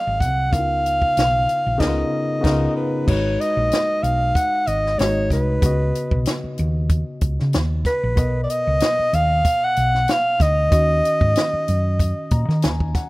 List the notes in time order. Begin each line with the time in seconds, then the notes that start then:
Already playing: F3 F#3 G#4 A#4 F5
0.07 G#1
0.20 C2 F#5, kick, closed hi-hat
0.50 C#2 C#3 B3 D#4 E4 F5, kick, closed hi-hat
0.55 A#4
0.60 F4
0.86 closed hi-hat
1.02 kick
1.17 B1, snare, closed hi-hat
1.49 closed hi-hat
1.67 A#1
1.77 C#2 C#3 B3 D#4 D#5, kick, snare, crash
1.82 A#4
1.88 F4
2.41 C#2 C#3 B3 D#4, kick, crash
2.46 A#4, snare
2.52 F4
2.76 B4
3.06 G#1 G#3 D#4 F#4 C#5, kick, crash
3.10 B4
3.41 D#5, closed hi-hat
3.57 A#1
3.72 snare, closed hi-hat
4.03 B1 F5, closed hi-hat
4.35 F#5, kick, closed hi-hat
4.67 G#1 D#5, closed hi-hat
4.86 snare
4.98 G#1 G#3 D#4 F#4 C#5 D#5, snare, closed hi-hat
5.30 C2 B4, kick, snare, closed hi-hat
5.61 C#2 C#3 B3 F#4, kick, closed hi-hat
5.66 D#5
5.95 closed hi-hat
6.11 B1, kick
6.25 snare, closed hi-hat
6.44 muted fingered electric bass stroke
6.58 D#2, closed hi-hat
6.89 kick, closed hi-hat
7.21 C#2, kick, closed hi-hat
7.40 C#3, snare
7.53 D#2, snare, closed hi-hat
7.85 B4, kick, snare, closed hi-hat
8.04 A#1
8.14 B1 B2 B3 A#4, kick, closed hi-hat
8.19 D#5
8.44 D5
8.50 D#5, closed hi-hat
8.67 C#2
8.80 snare, closed hi-hat
8.99 muted fingered electric bass stroke
9.13 D#2 F5, closed hi-hat
9.45 kick, closed hi-hat
9.64 F#5
9.76 B1, closed hi-hat
9.95 snare
10.08 F5, snare, closed hi-hat
10.40 D2 D#5, kick, snare, closed hi-hat
10.70 D#2 D#3 C#4 F#4, kick, closed hi-hat
10.74 D#5
11.05 closed hi-hat
11.21 G#2, kick
11.35 snare, closed hi-hat
11.53 muted fingered electric bass stroke
11.68 F#2, closed hi-hat
11.99 kick, closed hi-hat
12.31 A#2 A#5, kick, closed hi-hat
12.49 D#3, snare
12.62 D#2 G#5, snare, closed hi-hat
12.80 kick
12.95 F#5, kick, snare, closed hi-hat